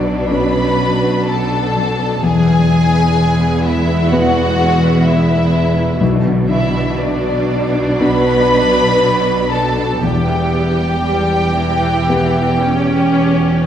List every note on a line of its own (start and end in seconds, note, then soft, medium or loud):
0.00 2.19 B1 soft
0.00 2.20 B1 soft
0.00 0.29 B2 soft
0.00 2.19 B2 soft
0.00 0.54 F#3 soft
0.00 2.19 F#3 soft
0.00 0.31 D4 soft
0.00 2.19 D4 soft
0.00 1.02 F#4 soft
0.00 1.26 B4 soft
0.00 0.31 D5 soft
0.04 0.79 B3 soft
0.30 2.27 B2 soft
0.30 2.19 C#4 soft
0.30 2.20 F#4 soft
0.30 1.28 B4 soft
0.30 2.20 B4 soft
0.30 1.28 B5 medium
0.55 1.74 F#3 soft
0.80 1.98 B3 soft
1.03 1.50 F#4 soft
1.27 2.21 A4 soft
1.27 2.92 B4 soft
1.27 2.24 A5 medium
1.51 2.27 F#4 soft
1.75 2.27 F#3 soft
1.99 2.45 B3 soft
2.22 5.97 E1 soft
2.22 5.97 E2 soft
2.22 5.97 E2 medium
2.22 4.11 E3 soft
2.22 5.97 G#3 soft
2.22 5.97 B3 soft
2.22 3.62 G#4 medium
2.22 3.65 G#5 medium
2.47 3.63 B3 soft
2.70 3.16 E4 soft
2.94 3.39 B4 soft
3.17 3.87 E4 soft
3.40 4.82 B4 soft
3.64 4.35 B3 soft
3.64 4.12 E4 soft
3.64 4.12 E5 medium
3.88 4.59 E4 soft
4.11 6.05 E3 soft
4.11 5.97 B3 soft
4.11 5.97 E4 soft
4.11 5.06 F#4 medium
4.11 5.98 B4 soft
4.11 5.06 F#5 medium
4.36 5.53 B3 soft
4.60 5.05 E4 soft
4.83 5.29 B4 soft
5.06 6.01 E4 soft
5.06 5.76 E4 soft
5.06 6.01 E5 medium
5.30 6.97 B4 soft
5.54 9.44 B3 soft
5.77 6.05 E4 soft
6.00 9.99 B1 soft
6.00 9.99 B2 medium
6.00 7.98 B2 soft
6.00 7.45 B2 medium
6.00 9.99 F#3 medium
6.00 9.99 D4 medium
6.24 10.14 D3 soft
6.48 7.73 D4 soft
6.48 6.94 E4 soft
6.48 6.95 E5 medium
6.97 8.00 D4 soft
6.97 8.99 B4 soft
6.97 8.00 D5 medium
7.74 8.49 D4 soft
8.00 10.07 B2 soft
8.00 9.99 B3 soft
8.00 10.00 D4 soft
8.00 9.52 B4 medium
8.00 10.00 B4 soft
8.00 9.52 B5 medium
8.50 9.76 D4 soft
9.00 11.04 B4 soft
9.51 10.03 A4 soft
9.51 10.03 A5 medium
9.77 10.07 D4 soft
10.02 13.66 E1 soft
10.02 13.66 E2 soft
10.02 12.08 E3 soft
10.02 10.91 G3 soft
10.02 10.91 B3 soft
10.02 13.61 G4 soft
10.02 13.65 G5 medium
10.28 11.56 E4 soft
10.53 11.81 B3 soft
11.05 11.53 G3 soft
11.05 13.12 B4 soft
11.57 12.62 E3 soft
11.57 12.34 E4 soft
11.82 12.60 B3 soft
12.09 13.66 E3 soft
12.09 13.66 B3 soft
12.09 13.66 G4 soft
12.09 13.66 B4 soft
12.35 13.64 E4 soft
12.61 13.66 B3 soft
12.61 13.65 C#4 medium
13.13 13.66 B4 soft
13.39 13.66 F#4 soft